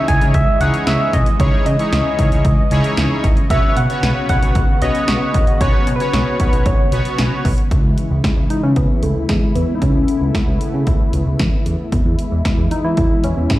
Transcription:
Already playing: C#3 E3 G#3 C#4 D#4 E4 G#4 C#5 D#5
0.08 C#2 G#5, kick, closed hi-hat
0.21 C#2, closed hi-hat
0.34 C#2 E5, kick, closed hi-hat
0.61 C#2 C#4 D#4 E4 G#4 C#5 F#5, closed hi-hat
0.74 closed hi-hat
0.87 C#2 E5, snare, closed hi-hat
1.13 B1 D#5, kick, closed hi-hat
1.26 closed hi-hat
1.40 C#2 C#4 D#4 E4 G#4 C#5, kick, closed hi-hat
1.66 C#3 D#5, closed hi-hat
1.79 C#4 D#4 E4 G#4 C#5, closed hi-hat
1.92 C#2, snare, closed hi-hat
2.19 C#2, kick, closed hi-hat
2.32 C#2, closed hi-hat
2.45 C#2, kick, closed hi-hat
2.71 C#2 C#4 D#4 E4 G#4 C#5, closed hi-hat
2.84 closed hi-hat
2.97 C#2, snare, closed hi-hat
3.24 A1, kick, closed hi-hat
3.37 closed hi-hat
3.50 B1 F#3 B3 C#4 F#4 B4 C#5 E5, kick, closed hi-hat
3.76 B2 F#5, closed hi-hat
3.90 B3 C#4 F#4 B4 C#5, closed hi-hat
4.03 B1, snare, closed hi-hat
4.29 B1 F#5, kick, closed hi-hat
4.42 B1, closed hi-hat
4.55 B1, kick, closed hi-hat
4.82 B1 B3 C#4 F#4 B4 C#5 D#5, closed hi-hat
4.95 closed hi-hat
5.08 B1, snare, closed hi-hat
5.34 A1, kick, closed hi-hat
5.47 closed hi-hat
5.61 B1 B3 C#4 F#4 B4 C#5, kick, closed hi-hat
5.87 B2, closed hi-hat
5.96 B4
6.00 B3 C#4 F#4 B4 C#5, closed hi-hat
6.13 B1 C#5, snare, closed hi-hat
6.40 B1, kick, closed hi-hat
6.49 B4
6.53 B1, closed hi-hat
6.66 B1 C#5, kick, closed hi-hat
6.92 B1 B3 C#4 F#4 B4 C#5, closed hi-hat
7.05 closed hi-hat
7.18 B1, snare, closed hi-hat
7.45 B1, kick, open hi-hat
7.58 closed hi-hat
7.71 C#2 C#3 E3 G#3 E4, kick, closed hi-hat
7.84 C#2
7.98 closed hi-hat
8.11 C#2
8.24 kick, snare, closed hi-hat
8.37 C#2
8.50 D#4, closed hi-hat
8.63 C#3 C#4
8.76 C#2 B3, kick, closed hi-hat
9.03 C#2 A3, closed hi-hat
9.16 C#2
9.29 E2 G#3, kick, snare, closed hi-hat
9.55 E2 B3, closed hi-hat
9.75 D#4
9.82 C#2 C#3 A3 B3 C#4, kick, closed hi-hat
9.95 C#2
10.08 closed hi-hat
10.21 C#2
10.35 kick, snare, closed hi-hat
10.48 C#2
10.61 closed hi-hat
10.74 C#3
10.87 C#2, kick, closed hi-hat
11.13 C#2, closed hi-hat
11.27 C#2
11.39 E2, kick, snare, closed hi-hat
11.66 E2, closed hi-hat
11.92 E2 B2 E3 G#3 E4, kick, closed hi-hat
12.05 E2
12.19 closed hi-hat
12.32 E2
12.45 kick, snare, closed hi-hat
12.58 E2
12.71 D#4, closed hi-hat
12.84 E3 E4
12.97 E2, kick, closed hi-hat
13.24 E2 C#4, closed hi-hat
13.37 E2
13.50 G#2, kick, snare, closed hi-hat

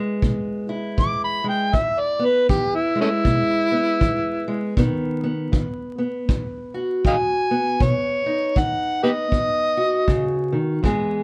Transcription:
Already playing: E3 G#3 B3 E4
0.22 B2, kick
0.69 E4
0.98 E3 D6, kick
1.25 B5
1.44 G#3
1.49 G5
1.74 E2 E5, kick
2.00 D5
2.19 B3
2.26 B4
2.49 E3 G4, kick
2.75 E4
2.95 G#3
3.01 A3 C#4 E4
3.25 B2, kick
3.72 B3
4.01 E3, kick
4.48 G#3
4.77 B2 D#3 B3, kick
5.24 B3
5.52 D#3, kick
5.98 B3
6.29 F#2, kick
6.74 F#4
7.05 D#3 D#5 F5 G#5, kick
7.51 B3
7.80 B2 C#5, kick
8.26 D#4
8.56 D#3 F#5, kick
9.03 B3 G4 B4 D#5
9.32 F#2, kick
9.77 F#4
10.07 C#3, kick
10.52 D#3
10.83 E2 E3 G#3 B3 G#4, kick

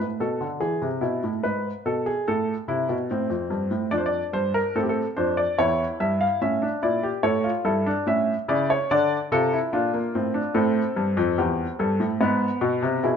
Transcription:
0.00 A2
0.20 B2 A4
0.41 D3
0.60 E3 G#4
0.82 C3
1.01 B2 E4
1.24 A2
1.43 G#2 B4
1.86 B2 A4
2.06 G#4
2.28 A2 A4
2.68 C3 E4
2.89 B2
3.11 A2 C4
3.30 F2
3.50 G2
3.71 A2
3.91 F2 D4 D5
3.98 C5
4.06 D5
4.33 G2 C5
4.54 A#4
4.75 A2 C4 A4
4.83 G4
4.89 A4
5.17 F2 D4 C5
5.37 D5
5.58 E2 E4 C#5
6.00 G2 E5
6.21 F5
6.41 A2 C#4 E5
6.62 D4
6.83 A#2 E4 D5
7.03 G4
7.23 A2 A4 C#5
7.44 F4
7.65 G2 E4 A4
7.86 D4
8.07 A2 C#4 E5
8.48 C#3 E4 D5
8.70 C#5
8.91 D3 D4 D5
9.32 C3 F4 A4
9.53 E4
9.73 A#2 D4 F4
9.94 A#3
10.15 A2 C4
10.34 D4
10.54 A2 C4 A4
10.96 G2
11.17 F2
11.38 E2 G4
11.79 G2 A4
12.00 A2
12.20 G#2 B3 B4
12.61 B2
12.82 C3
13.03 B2 E4 G#4

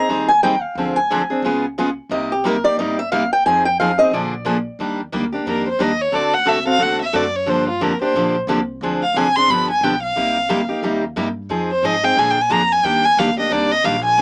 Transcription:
Already playing: A#5
0.09 D#2 D#3 G3 C4 D#4 G#4
0.28 G#5
0.43 D#3 G3 C4 D#4 G#4 G5
0.62 F5
0.75 D2 D3 F3 C4 D4 G#4
0.96 G#5
1.10 D3 F3 C4 D4 G#4
1.30 C4 D4 G#4
1.42 C#2 C#3 G#3 B3 F4 G#4
1.78 C#3 G#3 B3 F4 G#4
2.09 C2 C3 G3 A#3 D#4 G4 D#5
2.32 G4
2.44 C3 G3 A#3 D#4 G4 A#4
2.64 A#3 D#4 G4 D5
2.77 G1 C3 G3 A#3 D#4 G4 D#5
2.99 E5
3.12 C3 G3 A#3 D#4 G4 F5
3.33 G5
3.46 F2 F3 C4 D#4 G#4 G#5
3.65 G5
3.80 F3 C4 D#4 G#4 F5
3.98 C4 D#4 G#4 D#5
4.12 A#1 D3 F3 A#3 D4 G#4 D5
4.45 D3 F3 A#3 D4 G#4
4.79 D#2 D#3 G3 A#3 D4 G4
5.12 D2 D#3 G3 A#3 D4 G4
5.32 A#3 D4 G4
5.46 F2 D#3 G3 A#3 D4 G4 A#4
5.68 C5
5.79 D#2 D#3 G3 A#3 D4 G4 D#5
6.01 C#5
6.12 D2 D3 A3 C4 F#4 A4 D5
6.34 F#5
6.45 C2 D3 A3 C4 F#4 A4 E5
6.65 C4 F#4 A4 F5
6.79 E2 D3 A3 C4 F#4 A4
6.83 F#5
7.02 E5
7.13 F#2 D3 A3 C4 F#4 A4 D5
7.36 C#5
7.46 G2 D3 F3 A#3 D4 G4 C5
7.69 F4
7.81 F2 D3 F3 A#3 D4 G4 A#4
8.00 A#3 D4 G4 C5, muted upright bass stroke
8.14 A#1 D3 F3 A#3 D4 G4
8.47 C2 D3 F3 A#3 D4 G4
8.81 D2 D3 F3 C4 D4 G#4
9.03 F5
9.14 C2 D3 F3 C4 D4 G#4 G#5
9.36 C4 D4 G#4 C6
9.48 G1 D3 F3 B3 D4 G4 B5
9.71 G#5
9.81 B1 D3 F3 B3 D4 G4 G5
10.03 F5
10.16 C2 C3 G3 A#3 D#4 G4
10.49 D2 C3 G3 A#3 D#4 G4
10.69 A#3 D#4 G4, muted upright bass stroke
10.83 D#2 C3 G3 A#3 D#4 G4
11.16 G2 C3 G3 A#3 D#4 G4
11.49 F2 F3 C4 D#4 G#4
11.72 C5
11.83 G#2 F3 C4 D#4 G#4 D#5
12.03 C4 D#4 G#4 G5
12.17 A#2 D3 F3 A#3 D4 G#4 G#5
12.31 G5
12.41 G#5
12.50 F2 D3 F3 A#3 D4 G#4 A#5
12.72 G#5
12.83 D#2 D#3 G3 A#3 D4 G4 G5
13.05 G#5
13.17 D2 D#3 G3 A#3 D4 G4 F5
13.37 A#3 D4 G4 D#5
13.50 C2 D#3 G3 A#3 D4 G4 D5
13.71 D#5
13.84 A#1 D#3 G3 A#3 D4 G4 F5
14.05 G#5
14.18 F1 F3 C4

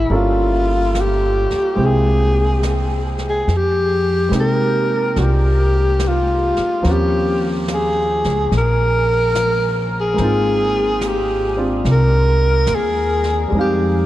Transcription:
Already playing: B3 C#4 E4 F#4 D#5
0.10 G1 G3 A#3 C#4 F4 A4, brush sweep
0.16 F4
0.95 snare, hi-hat pedal
1.01 G4
1.51 muted upright bass stroke, snare
1.75 C2 G#3 A#3 C4 E4 G5
1.80 brush sweep
1.85 G#4
2.63 snare, hi-hat pedal
3.18 snare
3.30 G#4
3.48 F2, brush sweep, snare
3.56 G4
4.29 C3 G#3 A#3 C4, snare, hi-hat pedal
4.33 D#4 G4
4.40 A#4
5.16 C2 A#3 D4 F4 F#4, brush sweep, snare
5.24 G4
6.00 snare, hi-hat pedal
6.08 F4
6.56 muted upright bass stroke, snare
6.83 D#2 F3 A#3 C4 C#4 F4, brush sweep, snare
6.92 G4
7.68 snare, hi-hat pedal
7.74 G#4
8.24 C#2, snare
8.52 A#1, brush sweep, snare
8.58 A#4
9.35 snare, hi-hat pedal
10.01 G#4
10.14 G#3 A#3
10.18 G#1 C4 D#4, brush sweep, snare
10.23 F4
11.01 snare, hi-hat pedal
11.07 G4
11.56 C4 D4 F4
11.85 C2, brush sweep, snare
11.91 A#4
12.67 D#2, snare, hi-hat pedal
12.75 G#4
13.24 snare
13.48 G3 G#3, brush sweep
13.52 F2 C4 D#4
13.59 G4 F5

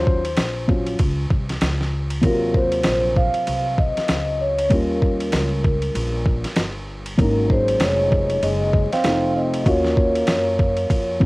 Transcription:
Already playing: D#2 F#3 C#4 F4 C5
0.07 kick
0.25 ride
0.37 A#1, snare, hi-hat pedal, ride
0.68 F#3 C#4 F4, kick
0.86 ride
0.99 C#2, kick, ride
1.30 C2, kick
1.49 snare, ride
1.61 C#2, snare, hi-hat pedal, ride
1.81 snare
2.10 ride
2.21 D#2 C3 F#3 A#3 F4 A#4, kick, ride
2.54 C5, kick
2.72 ride
2.83 A#1, snare, hi-hat pedal, ride
3.16 F5, kick
3.34 muted upright bass stroke, ride
3.47 C2, ride
3.78 D#5, kick
3.97 muted upright bass stroke, snare, ride
4.08 C#2, snare, hi-hat pedal, ride
4.41 C#5
4.58 ride
4.69 D#2 G3 A#3 C#4 F4 A#4, kick, ride
5.02 kick
5.20 ride
5.32 C#2, snare, hi-hat pedal, ride
5.64 kick
5.82 ride
5.95 A#1, ride
6.26 kick
6.44 muted upright bass stroke, snare, ride
6.56 G1, snare, hi-hat pedal, ride
7.06 ride
7.17 G#1 F#3 A#3 C#4 A#4, kick, ride
7.21 D#4
7.50 G#3 C5, kick
7.68 ride
7.80 F1 G#3 C#5, snare, hi-hat pedal, ride
8.12 kick
8.30 ride
8.43 F#1 G#3 D#5, ride
8.73 kick
8.92 C4 F5, muted upright bass stroke, snare, ride
9.04 F1 F3 A3 C4 D#4, snare, hi-hat pedal, ride
9.36 C4 D#5
9.54 ride
9.64 D#2 A#3 C#4 F4 F#4 C#5, kick, ride
9.85 snare
9.97 kick
10.15 ride
10.27 F#2, snare, hi-hat pedal, ride
10.59 kick
10.77 ride
10.90 F2, kick, ride
11.20 F#3 A#3 C#4 F4, kick

